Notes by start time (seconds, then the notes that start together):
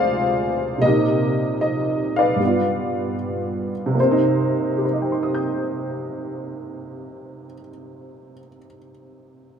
Already playing: D2 C3 G#3 F4 G#4 C5 D5 F5
0.78 A#2 C3 D#5
0.86 C4 D#4 G4 A#4
1.61 D#5
2.16 B4 D5 F5
2.36 G2 G3
2.43 B3
2.47 F4
3.86 C3
3.95 A#3
4.00 C4 C5
4.12 D#4
4.77 G4
4.85 C5
4.93 D#5
5.02 G5
5.12 C6
5.23 D#6
5.35 G6